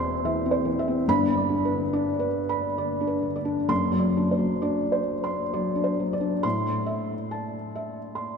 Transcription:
Already playing: E1 E2 E3 C4 C5 E5 C6
0.25 E3 E5
0.46 C4
0.51 C5
0.65 E3
0.79 E5
0.88 C4
1.08 G1 G2 B5
1.30 D3
1.37 D5
1.50 D4
1.65 B4
1.72 D3
1.93 D4 D5
2.19 B4
2.49 B5
2.78 D3 D5
3.01 D4
3.07 B4
3.23 D3
3.36 D5
3.45 D4
3.68 F#1 F#2 C6
3.92 F#3
3.99 D5
4.17 D4
4.31 C5
4.39 F#3
4.62 D4 D5
4.92 C5
5.24 C6
5.53 F#3 D5
5.76 D4
5.84 C5
6.00 F#3
6.13 D5
6.21 D4
6.43 A2 C6
6.86 E5
7.31 A5
7.75 E5
8.15 C6

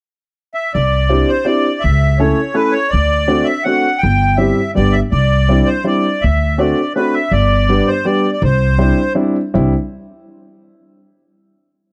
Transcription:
0.54 E5
0.74 C2 D5
1.09 C4 D4 E4 G4
1.28 C5
1.45 C4 D4 E4 G4 D5
1.80 E5
1.84 C#2
2.18 A3 C#4 E4 A4 C#5
2.54 A3 C#4 E4 A4 B4
2.72 C#5
2.90 D2 D5
3.28 A3 C4 D4 F#4
3.44 E5
3.64 A3 C4 D4 F#4 F#5
3.98 G5
4.03 G1
4.36 G3 C4 E4 G4 E5
4.75 G1 G3 B3 D4 G4 D5
4.92 E5
5.11 C2 D5
5.49 G3 C4 D4 E4
5.66 C5
5.84 G3 C4 D4 E4 D5
6.21 D2 E5
6.58 A3 C4 D4 F#4 D5
6.95 A3 C4 D4 F#4 B4
7.14 E5
7.31 G1 D5
7.69 G3 B3 D4 G4
7.88 C5
8.04 G3 B3 D4 G4 D5
8.32 D5
8.42 C2 C5
8.78 G3 C4 D4 E4
9.15 G3 C4 D4 E4
9.54 C2 G3 C4 D4 E4

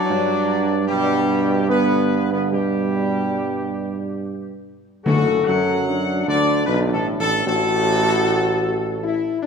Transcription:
Already playing: F#3 D4 D5
0.10 G2
0.88 B2 G3 G4
1.68 D3 B3 B4
2.31 D3 B3 B4
2.51 B2 G3 G4
5.05 F#1 F#2 D3 F#4 A4
5.46 F#2 F#3 F#5
5.88 D4
6.26 D2 D3 D5
6.66 B1 B2 B4
6.92 A1 A2 A4
7.19 A1 A2 A4
7.45 A1 A2 F#4 A4
9.03 E4
9.43 D4

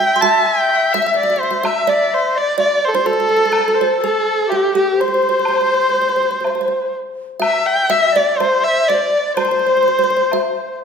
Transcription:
Already playing: E5 G5
0.00 G5
0.16 C6
0.21 A5
0.45 G5
0.69 low woodblock
0.93 E5
1.02 E5
1.07 E5
1.14 D5 E5
1.23 E5
1.30 E5
1.36 E5
1.40 C5 E5
1.51 E5
1.64 E5, high woodblock
1.87 D5
2.14 C5
2.36 D5
2.57 D5, low woodblock
2.85 A4 C5
2.91 D4 C5
2.98 E4 G4
3.05 A4
3.20 A4
3.29 A4
3.37 A4
3.52 A4, high woodblock
3.58 A4
3.68 A4
3.75 C5
3.81 C5
3.97 A4
4.03 A4
4.46 G4, low woodblock
4.52 G4
4.75 G4
4.96 C5
5.00 C5
5.08 C5
5.14 C5
5.23 C5
5.29 C5
5.39 C5
5.45 C5, high woodblock
5.54 C5
5.67 C5
5.74 C5
5.82 C5
5.89 C5
5.96 C5
6.02 C5
6.09 C5
6.16 C5
6.23 C5
6.31 C5
6.41 C5, high woodblock, low woodblock
6.47 C5
6.55 C5
6.61 C5
6.68 C5
7.40 E5, high woodblock
7.66 G5
7.89 E5
8.12 D5
8.37 C5, high woodblock, low woodblock
8.63 E5
8.88 D5
8.94 C5
9.02 D5
9.36 C5, high woodblock
9.45 C5
9.51 C5
9.59 C5
9.67 C5
9.77 C5
9.83 C5
9.88 C5
9.99 C5
10.04 C5
10.10 C5
10.17 C5
10.31 E5, high woodblock, low woodblock

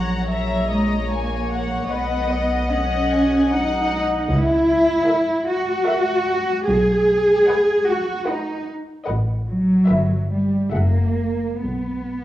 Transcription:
Already playing: A#1 F#3 C#5 F#5 A#5
0.29 C#5 E5 A#5
0.70 G#3 D#5
1.10 A#3 C#5 G#5
1.51 F#5
1.90 B1 B3 B4 D#5 F#5
2.32 D#5
2.71 C#4 D#5 F#5
3.11 G#5
3.50 D#4 D#5 F#5
4.28 C#2 E4
5.07 A#4 E5
5.47 F#4
5.86 A#4 E5
6.65 B1 G#4
7.47 B4 D#5 F#5
7.88 F#4
8.27 D#4 B4 D#5 F#5
9.07 A1 B4 D#5 F#5
9.49 F#3
9.88 G1 B4 E5
10.31 G3
10.73 F#1 A#3 G#4 E5 F#5
11.62 B1 B3

